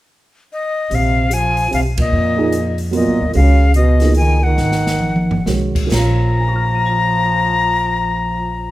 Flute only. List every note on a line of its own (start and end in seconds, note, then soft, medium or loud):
0.53 0.96 D#5 medium
0.95 1.35 F5 medium
1.34 1.73 G#5 medium
1.74 1.80 F5 medium
2.00 2.76 D#5 medium
2.96 3.32 D#5 medium
3.36 3.73 F5 medium
3.75 4.13 D#5 medium
4.16 4.45 G#5 medium
4.43 5.46 F#5 medium
5.93 8.71 A#5 medium